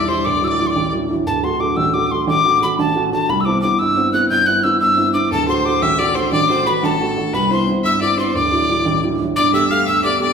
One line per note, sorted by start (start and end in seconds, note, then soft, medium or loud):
0.00 0.21 E1 medium
0.08 0.22 G3 soft
0.08 0.22 D4 soft
0.08 0.22 E4 medium
0.08 0.27 C5 medium
0.08 0.26 C6 medium
0.25 1.23 D1 medium
0.25 0.58 D2 medium
0.25 0.48 D5 medium
0.25 0.46 D6 medium
0.41 0.57 F#3 medium
0.41 0.58 D4 soft
0.41 0.58 E4 medium
0.41 0.49 E6 medium
0.48 0.69 D5 medium
0.48 0.68 D6 medium
0.59 0.86 F#3 medium
0.59 0.86 D4 soft
0.59 0.86 E4 medium
0.67 0.91 D5 medium
0.67 0.72 C6 medium
0.67 0.93 D6 medium
0.76 1.08 A1 medium
0.92 1.08 F#3 medium
0.92 1.08 D4 soft
0.92 1.09 E4 medium
1.10 1.23 F#3 soft
1.10 1.23 D4 soft
1.10 1.23 E4 medium
1.27 2.24 D1 medium
1.27 1.59 D2 medium
1.27 1.45 A5 loud
1.43 1.58 A3 medium
1.43 1.58 D4 medium
1.43 1.59 F#4 medium
1.43 1.62 C6 medium
1.60 1.87 A3 soft
1.60 1.87 D4 soft
1.60 1.87 F#4 medium
1.60 1.78 D6 medium
1.77 2.10 A1 medium
1.77 1.95 E6 loud
1.94 2.09 A3 medium
1.94 2.09 D4 soft
1.94 2.10 F#4 medium
1.94 2.07 D6 loud
2.07 2.37 A3 medium
2.07 2.13 D6 medium
2.11 2.38 D4 soft
2.11 2.38 F#4 medium
2.11 2.28 C6 medium
2.27 2.60 A1 medium
2.27 2.59 D6 loud
2.44 2.60 A3 medium
2.44 2.60 D4 soft
2.44 2.61 F#4 medium
2.61 2.88 A3 medium
2.61 2.88 D4 soft
2.61 2.89 F#4 medium
2.61 2.78 B5 medium
2.79 3.11 A1 medium
2.79 3.10 A5 loud
2.95 3.11 A3 medium
2.95 3.11 D4 soft
2.95 3.12 F#4 medium
3.12 3.26 A3 medium
3.12 3.26 D4 medium
3.12 3.26 F#4 medium
3.12 3.31 A5 medium
3.29 3.62 C2 medium
3.29 3.42 B5 loud
3.41 3.47 E6 medium
3.45 3.62 B3 medium
3.45 3.62 C4 medium
3.45 3.62 E4 medium
3.45 3.61 D6 loud
3.62 3.90 B3 medium
3.62 3.90 C4 medium
3.62 3.90 E4 medium
3.62 3.80 D6 loud
3.79 4.12 G1 medium
3.79 4.13 E6 loud
3.97 4.12 B3 medium
3.97 4.12 C4 medium
3.97 4.12 E4 medium
4.13 4.40 B3 medium
4.13 4.40 C4 soft
4.13 4.40 E4 medium
4.13 4.29 F#6 loud
4.30 4.63 G1 medium
4.30 4.48 G6 loud
4.46 4.62 B3 medium
4.46 4.63 C4 soft
4.46 4.63 E4 medium
4.46 4.65 F#6 loud
4.64 4.91 B3 medium
4.64 4.91 C4 soft
4.64 4.91 E4 medium
4.64 4.80 E6 loud
4.80 5.13 G1 medium
4.80 5.12 E6 loud
4.97 5.12 B3 medium
4.97 5.13 C4 medium
4.97 5.13 E4 medium
5.14 5.28 B3 soft
5.14 5.28 C4 soft
5.14 5.28 E4 medium
5.14 5.30 D6 medium
5.31 6.28 D1 medium
5.31 5.64 D2 medium
5.31 5.47 A4 medium
5.31 5.47 A5 loud
5.48 5.63 A3 medium
5.48 5.64 D4 medium
5.48 5.64 F#4 medium
5.48 5.84 C5 medium
5.48 5.67 C6 medium
5.65 5.92 A3 medium
5.65 5.92 D4 soft
5.65 5.92 F#4 medium
5.65 5.84 D6 medium
5.82 6.15 A1 medium
5.82 6.00 E5 medium
5.82 6.01 E6 loud
5.99 6.14 A3 medium
5.99 6.15 D4 soft
5.99 6.15 F#4 medium
5.99 6.16 D5 medium
5.99 6.18 D6 loud
6.15 6.42 A3 medium
6.15 6.43 D4 medium
6.15 6.43 F#4 medium
6.15 6.32 C5 medium
6.15 6.33 C6 medium
6.32 6.65 A1 medium
6.32 6.48 D5 medium
6.32 6.64 D6 loud
6.49 6.65 A3 medium
6.49 6.65 D4 soft
6.49 6.66 F#4 medium
6.49 6.68 C5 medium
6.66 6.93 A3 medium
6.66 6.93 D4 soft
6.66 6.94 F#4 medium
6.66 6.85 B4 medium
6.66 6.73 B5 medium
6.83 7.16 A1 medium
6.83 7.35 A4 medium
6.83 7.12 A5 medium
7.00 7.15 A3 medium
7.00 7.16 D4 medium
7.00 7.16 F#4 medium
7.17 7.30 A3 medium
7.17 7.31 D4 soft
7.17 7.31 F#4 medium
7.33 7.66 C2 medium
7.33 7.52 B4 medium
7.33 7.51 B5 loud
7.50 7.66 B3 medium
7.50 7.66 C4 medium
7.50 7.66 E4 medium
7.50 7.67 C5 medium
7.50 7.67 C6 medium
7.67 7.94 B3 medium
7.67 7.94 C4 soft
7.67 7.95 E4 medium
7.84 8.17 G1 medium
7.84 8.00 E5 medium
7.84 8.00 E6 loud
8.01 8.15 B3 medium
8.01 8.16 C4 soft
8.01 8.17 E4 medium
8.01 8.19 D5 medium
8.01 8.17 D6 medium
8.17 8.31 B3 medium
8.17 8.31 C4 soft
8.17 8.31 E4 medium
8.17 8.37 C5 medium
8.17 8.34 C6 medium
8.35 9.32 D1 medium
8.35 8.67 D2 medium
8.35 9.02 D5 medium
8.35 8.99 D6 loud
8.52 8.67 F#3 medium
8.52 8.67 D4 soft
8.52 8.68 E4 medium
8.69 8.96 F#3 medium
8.69 8.96 D4 soft
8.69 8.96 E4 medium
8.85 9.18 A1 medium
9.02 9.18 F#3 medium
9.02 9.18 D4 soft
9.02 9.19 E4 medium
9.19 9.33 F#3 medium
9.19 9.33 D4 soft
9.19 9.33 E4 medium
9.36 10.33 G1 medium
9.36 9.69 G2 medium
9.36 9.52 D5 medium
9.36 9.52 D6 loud
9.53 9.68 A3 medium
9.53 9.68 B3 medium
9.53 9.69 G4 medium
9.53 9.72 E5 medium
9.53 9.69 E6 loud
9.69 9.97 A3 medium
9.69 9.97 B3 medium
9.69 9.97 G4 medium
9.69 9.88 F5 medium
9.69 9.86 F6 loud
9.86 10.19 D2 medium
9.86 10.03 E5 medium
9.86 10.03 E6 loud
10.03 10.18 A3 medium
10.03 10.18 B3 medium
10.03 10.19 G4 medium
10.03 10.19 D5 medium
10.03 10.19 D6 loud
10.20 10.33 A3 medium
10.20 10.33 B3 medium
10.20 10.33 G4 medium
10.20 10.33 D5 medium
10.20 10.33 D6 loud